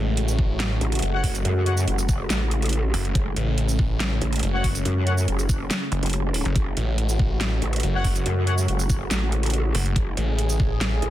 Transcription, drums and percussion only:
0.17 closed hi-hat
0.28 shaker
0.39 kick
0.60 snare, closed hi-hat
0.81 closed hi-hat
0.92 closed hi-hat
0.95 closed hi-hat
0.99 closed hi-hat
1.02 closed hi-hat
1.24 kick, open hi-hat
1.35 closed hi-hat, shaker
1.45 closed hi-hat
1.66 closed hi-hat
1.77 shaker
1.88 closed hi-hat
1.99 shaker
2.09 kick, shaker
2.30 snare, closed hi-hat, shaker
2.51 closed hi-hat
2.62 closed hi-hat
2.66 closed hi-hat
2.69 closed hi-hat
2.73 closed hi-hat
2.94 open hi-hat
3.05 closed hi-hat
3.15 kick, closed hi-hat
3.36 closed hi-hat
3.58 closed hi-hat
3.69 shaker
3.79 kick
4.00 snare, closed hi-hat
4.21 closed hi-hat
4.33 closed hi-hat
4.36 closed hi-hat
4.39 closed hi-hat
4.43 closed hi-hat
4.64 kick, open hi-hat
4.75 closed hi-hat, shaker
4.85 closed hi-hat
5.07 closed hi-hat
5.18 shaker
5.28 closed hi-hat
5.39 shaker
5.49 kick, shaker
5.71 snare, closed hi-hat, shaker
5.92 closed hi-hat
6.03 closed hi-hat
6.06 closed hi-hat
6.10 closed hi-hat
6.13 closed hi-hat
6.34 open hi-hat
6.45 closed hi-hat
6.56 kick, closed hi-hat
6.77 closed hi-hat
6.98 closed hi-hat
7.09 shaker
7.19 kick
7.41 snare, closed hi-hat
7.62 closed hi-hat
7.73 closed hi-hat
7.76 closed hi-hat
7.80 closed hi-hat
7.83 closed hi-hat
8.05 kick, open hi-hat
8.16 closed hi-hat, shaker
8.26 closed hi-hat
8.47 closed hi-hat
8.58 shaker
8.68 closed hi-hat
8.79 shaker
8.90 kick, shaker
9.11 snare, closed hi-hat, shaker
9.32 closed hi-hat
9.43 closed hi-hat
9.46 closed hi-hat
9.50 closed hi-hat
9.53 closed hi-hat
9.75 open hi-hat
9.86 closed hi-hat
9.96 kick, closed hi-hat
10.17 closed hi-hat
10.39 closed hi-hat
10.49 shaker
10.60 kick
10.81 snare, closed hi-hat
11.02 closed hi-hat

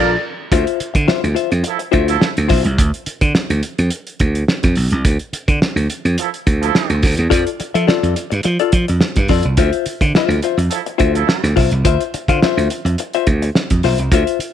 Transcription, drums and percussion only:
0.52 kick, closed hi-hat
0.67 closed hi-hat
0.80 closed hi-hat
0.95 kick, closed hi-hat
1.08 snare
1.24 closed hi-hat
1.36 closed hi-hat
1.52 closed hi-hat
1.64 closed hi-hat
1.79 closed hi-hat
1.93 kick, closed hi-hat
2.08 closed hi-hat
2.22 snare
2.37 closed hi-hat
2.49 kick, snare, open hi-hat
2.64 closed hi-hat
2.78 kick, closed hi-hat
2.94 closed hi-hat
3.06 closed hi-hat
3.21 kick, closed hi-hat
3.35 snare
3.50 closed hi-hat
3.63 closed hi-hat
3.79 closed hi-hat
3.90 closed hi-hat
4.07 closed hi-hat
4.20 kick, closed hi-hat
4.35 closed hi-hat
4.48 snare
4.63 kick, snare, closed hi-hat
4.75 open hi-hat
4.91 closed hi-hat
5.05 kick, closed hi-hat
5.19 closed hi-hat
5.33 closed hi-hat
5.48 kick, closed hi-hat
5.62 snare
5.77 closed hi-hat
5.90 closed hi-hat
6.05 closed hi-hat
6.18 closed hi-hat
6.34 closed hi-hat
6.47 kick, closed hi-hat
6.63 closed hi-hat
6.75 snare
6.90 closed hi-hat
7.03 kick, snare, open hi-hat
7.17 closed hi-hat
7.31 kick, closed hi-hat
7.47 closed hi-hat
7.60 closed hi-hat
7.75 closed hi-hat
7.89 snare
8.04 closed hi-hat
8.16 closed hi-hat
8.32 closed hi-hat
8.43 closed hi-hat
8.59 closed hi-hat
8.72 kick, closed hi-hat
8.88 closed hi-hat
9.01 snare
9.16 kick, snare, closed hi-hat
9.28 kick, snare, open hi-hat
9.43 closed hi-hat
9.57 kick, closed hi-hat
9.73 closed hi-hat
9.86 closed hi-hat
10.01 kick, closed hi-hat
10.15 snare
10.31 closed hi-hat
10.43 closed hi-hat
10.59 closed hi-hat
10.71 closed hi-hat
10.86 closed hi-hat
10.99 kick, closed hi-hat
11.15 closed hi-hat
11.29 snare
11.44 snare, closed hi-hat
11.57 kick, snare, open hi-hat
11.71 closed hi-hat
11.85 kick, closed hi-hat
12.01 closed hi-hat
12.14 closed hi-hat
12.28 kick, closed hi-hat
12.42 snare
12.58 closed hi-hat
12.70 closed hi-hat
12.86 closed hi-hat
12.98 closed hi-hat
13.13 closed hi-hat
13.27 kick, closed hi-hat
13.42 closed hi-hat
13.55 snare
13.70 kick, closed hi-hat
13.83 snare, open hi-hat
13.98 closed hi-hat
14.12 kick, closed hi-hat
14.27 closed hi-hat
14.40 closed hi-hat

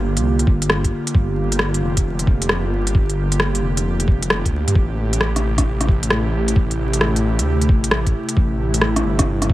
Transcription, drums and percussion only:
0.17 closed hi-hat
0.39 closed hi-hat
0.47 kick
0.62 closed hi-hat
0.70 cross-stick
0.84 kick, closed hi-hat
1.07 closed hi-hat
1.15 kick
1.52 closed hi-hat
1.59 cross-stick
1.74 closed hi-hat
1.97 kick, closed hi-hat
2.19 closed hi-hat
2.27 kick
2.42 closed hi-hat
2.49 cross-stick
2.87 closed hi-hat
2.95 kick
3.10 closed hi-hat
3.32 closed hi-hat
3.40 cross-stick
3.55 closed hi-hat
3.77 closed hi-hat
4.00 closed hi-hat
4.08 kick
4.22 closed hi-hat
4.30 cross-stick
4.45 kick, closed hi-hat
4.68 closed hi-hat
4.76 kick
5.13 closed hi-hat
5.21 cross-stick
5.36 cross-stick, closed hi-hat
5.58 kick, cross-stick, closed hi-hat
5.81 cross-stick, closed hi-hat
5.88 kick
6.03 closed hi-hat
6.10 cross-stick
6.48 closed hi-hat
6.56 kick
6.71 closed hi-hat
6.93 closed hi-hat
7.01 cross-stick
7.16 closed hi-hat
7.39 closed hi-hat
7.61 closed hi-hat
7.69 kick
7.84 closed hi-hat
7.91 cross-stick
8.07 kick, closed hi-hat
8.29 closed hi-hat
8.37 kick
8.74 closed hi-hat
8.81 cross-stick
8.96 cross-stick, closed hi-hat
9.19 kick, cross-stick, closed hi-hat
9.42 cross-stick, closed hi-hat
9.50 kick

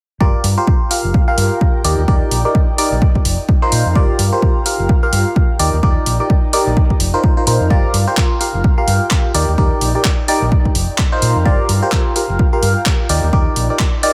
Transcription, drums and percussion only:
0.21 kick
0.44 open hi-hat
0.67 kick
0.91 open hi-hat
1.14 kick
1.38 open hi-hat
1.61 kick
1.85 open hi-hat
2.08 kick
2.31 open hi-hat
2.55 kick
2.78 open hi-hat
3.02 kick
3.15 kick
3.25 open hi-hat
3.49 kick
3.72 open hi-hat
3.96 kick
4.19 open hi-hat
4.42 kick
4.66 open hi-hat
4.89 kick
5.13 open hi-hat
5.36 kick
5.59 open hi-hat
5.83 kick
6.06 open hi-hat
6.30 kick
6.53 open hi-hat
6.77 kick
6.90 kick
7.00 open hi-hat
7.24 kick
7.47 open hi-hat
7.70 kick
7.94 open hi-hat
8.17 kick, clap
8.41 open hi-hat
8.64 kick
8.88 open hi-hat
9.11 kick, clap
9.35 open hi-hat
9.58 kick
9.81 open hi-hat
10.04 kick, clap
10.28 open hi-hat
10.52 kick
10.65 kick
10.75 open hi-hat
10.98 kick, clap
11.22 open hi-hat
11.46 kick
11.69 open hi-hat
11.92 kick, clap
12.16 open hi-hat
12.39 kick
12.63 open hi-hat
12.86 kick, clap
13.09 open hi-hat
13.33 kick
13.56 open hi-hat
13.79 kick, clap
14.03 open hi-hat

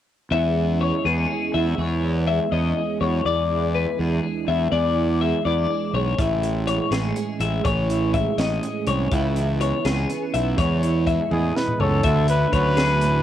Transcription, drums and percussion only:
6.18 kick, closed hi-hat
6.43 closed hi-hat
6.68 closed hi-hat
6.92 snare, closed hi-hat
7.16 closed hi-hat
7.40 closed hi-hat
7.65 kick, closed hi-hat
7.90 closed hi-hat
8.14 kick, closed hi-hat
8.38 snare, closed hi-hat
8.63 closed hi-hat
8.87 closed hi-hat
9.12 kick, closed hi-hat
9.36 closed hi-hat
9.61 closed hi-hat
9.85 snare, closed hi-hat
10.10 closed hi-hat
10.34 closed hi-hat
10.58 kick, closed hi-hat
10.83 closed hi-hat
11.07 kick, closed hi-hat
11.31 high tom
11.57 snare
11.68 mid tom
11.80 floor tom
12.03 kick, closed hi-hat
12.28 closed hi-hat
12.53 kick, closed hi-hat
12.77 snare, closed hi-hat
13.01 closed hi-hat

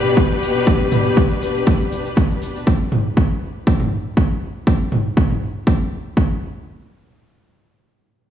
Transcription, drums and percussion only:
0.05 cabasa
0.17 kick, cabasa
0.30 cabasa
0.43 cabasa
0.55 cabasa
0.67 kick, cabasa
0.80 cabasa
0.92 mid tom, cabasa
1.04 cabasa
1.17 kick, cabasa
1.30 cabasa
1.42 cabasa
1.55 cabasa
1.67 kick, cabasa
1.80 cabasa
1.92 cabasa
2.05 cabasa
2.17 kick, cabasa
2.31 cabasa
2.42 cabasa
2.56 cabasa
2.67 kick
2.92 mid tom
3.17 kick
3.67 kick
3.80 mid tom
4.17 kick
4.67 kick
4.92 mid tom
5.17 kick
5.30 mid tom
5.67 kick
6.17 kick

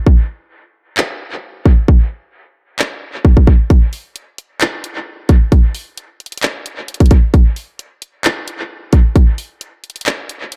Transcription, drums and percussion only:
0.07 kick
0.97 clap
1.66 kick
1.88 kick
2.79 clap
3.25 kick
3.37 kick
3.47 kick
3.70 kick, closed hi-hat
3.93 open hi-hat
4.16 closed hi-hat
4.38 closed hi-hat
4.61 clap, closed hi-hat
4.84 closed hi-hat
5.29 kick, closed hi-hat
5.52 kick, closed hi-hat
5.75 open hi-hat
5.97 closed hi-hat
6.20 closed hi-hat
6.26 closed hi-hat
6.32 closed hi-hat
6.38 closed hi-hat
6.43 clap, closed hi-hat
6.66 closed hi-hat
6.88 closed hi-hat
6.94 closed hi-hat
7.00 kick, closed hi-hat
7.06 closed hi-hat
7.11 kick, closed hi-hat
7.34 kick, closed hi-hat
7.56 open hi-hat
7.79 closed hi-hat
8.02 closed hi-hat
8.24 clap, closed hi-hat
8.48 closed hi-hat
8.93 kick, closed hi-hat
9.16 kick, closed hi-hat
9.38 open hi-hat
9.61 closed hi-hat
9.84 closed hi-hat
9.90 closed hi-hat
9.96 closed hi-hat
10.01 closed hi-hat
10.06 clap, closed hi-hat
10.29 closed hi-hat
10.52 closed hi-hat

